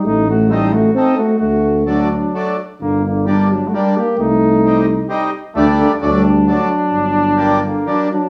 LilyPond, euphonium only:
\new Staff \with { instrumentName = "Euphonium" } { \clef bass \time 3/4 \key g \minor \tempo 4 = 131 a8 a8 g8 a8 c'8 a8 | a4 fis4. r8 | d8 d8 g8 fis16. a32 g8 bes8 | a2 r4 |
d8 d8 g4 fis4~ | fis4. d8 fis8 fis8 | }